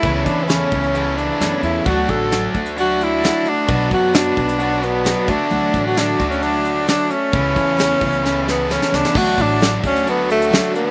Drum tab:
CC |----------------|----------------|----------------|----------------|
HH |x-x-x-xxx-x-x-x-|x-x-x-xxx-x-x-x-|x-x-x-xxx-x-x-x-|x-x-x-xxx-x-x-x-|
SD |----o-------o---|----o-------o---|----o-------o---|----o-------o---|
BD |o-o---o---------|o-o---o---------|o-o---o-------o-|--o---o---------|

CC |----------------|x---------------|
HH |x-x-x-xx--------|--x-x-xxx-xxx-x-|
SD |----o---o-o-oooo|----o-------o---|
BD |o-o---o---------|o-o---o---------|